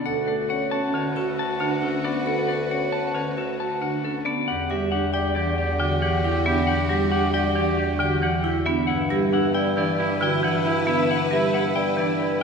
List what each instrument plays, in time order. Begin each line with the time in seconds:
Already playing: marimba B3, clean electric guitar D5
0.06 bass clarinet D2, oboe F#4, string section F#4 B4, vibraphone A4, clean electric guitar F#5
0.27 marimba A3, clean electric guitar D5
0.49 marimba C#4, vibraphone C#5, clean electric guitar F#5
0.71 vibraphone C#4, clean electric guitar A5
0.94 marimba D3, clean electric guitar C#5
1.16 vibraphone F#4, clean electric guitar A4
1.39 clean electric guitar A5
1.60 marimba D3, vibraphone D4, clean electric guitar F#5
1.82 vibraphone C#4, clean electric guitar A4
2.04 marimba B3, clean electric guitar D5
2.26 vibraphone A4, clean electric guitar F#5
2.48 marimba A3, clean electric guitar D5
2.71 marimba C#4, vibraphone C#5, clean electric guitar F#5
2.92 vibraphone C#4, clean electric guitar A5
3.15 marimba D3, clean electric guitar C#5
3.37 vibraphone F#4, clean electric guitar A4
3.60 clean electric guitar A5
3.81 marimba D3, vibraphone D4, clean electric guitar F#5
4.04 vibraphone C#4, clean electric guitar A4
4.25 marimba B3, clean electric guitar D5
4.47 bass clarinet E2, string section F#4 G4, oboe G4, clean electric guitar F#5
4.69 marimba G3, oboe G4, vibraphone G4, clean electric guitar E5
4.92 marimba D4, oboe G4, clean electric guitar F#5
5.14 oboe G4, vibraphone D5, clean electric guitar G5
5.35 marimba E3, vibraphone D4, oboe G4, clean electric guitar D5
5.58 clean electric guitar G4, oboe G4
5.80 marimba D3, vibraphone F#4, oboe G4, clean electric guitar G5
6.02 marimba E3, oboe G4, clean electric guitar F#5
6.24 vibraphone E4, clean electric guitar G4, oboe G4
6.46 marimba B3, vibraphone D4, oboe G4, clean electric guitar E5
6.67 oboe G4, clean electric guitar F#5
6.89 marimba G3, oboe G4, vibraphone G4, clean electric guitar E5
7.12 marimba D4, oboe G4, clean electric guitar F#5
7.34 oboe G4, vibraphone D5, clean electric guitar G5
7.55 marimba E3, vibraphone D4, oboe G4, clean electric guitar D5
7.77 clean electric guitar G4, oboe G4
7.99 marimba D3, vibraphone F#4, oboe G4, clean electric guitar G5
8.22 marimba E3, oboe G4, clean electric guitar F#5
8.44 vibraphone E4, clean electric guitar G4, oboe G4
8.66 marimba B3, vibraphone D4, clean electric guitar E5
8.87 bass clarinet G2, oboe E4, string section E4 B4, clean electric guitar F#5
9.10 marimba G3, oboe E4, vibraphone G4, clean electric guitar E5
9.32 marimba D4, oboe E4, clean electric guitar F#5
9.54 oboe E4, vibraphone D5, clean electric guitar G5
9.76 marimba E3, vibraphone D4, oboe E4, clean electric guitar D5
9.98 oboe E4, clean electric guitar G4
10.20 marimba D3, oboe E4, vibraphone F#4, clean electric guitar G5
10.43 marimba E3, oboe E4, clean electric guitar F#5
10.65 oboe E4, vibraphone E4, clean electric guitar G4
10.87 marimba B3, vibraphone D4, oboe E4, clean electric guitar E5
11.09 oboe E4, clean electric guitar F#5
11.31 marimba G3, oboe E4, vibraphone G4, clean electric guitar E5
11.53 marimba D4, oboe E4, clean electric guitar F#5
11.76 oboe E4, vibraphone D5, clean electric guitar G5
11.97 marimba E3, vibraphone D4, oboe E4, clean electric guitar D5
12.19 oboe E4, clean electric guitar G4